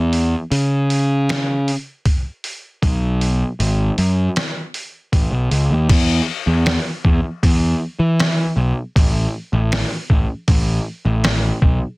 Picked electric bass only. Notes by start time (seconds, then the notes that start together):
Already playing: E2
0.51 C#3
2.83 B1
3.60 G#1
3.98 F#2
5.13 A1
5.32 B1
5.51 C#2
5.71 D#2
5.90 E2
6.47 E2
7.05 E2
7.43 E2
7.99 E3
8.56 B1
8.96 A1
9.53 A1
10.10 A1
10.48 A1
11.05 A1
11.62 B1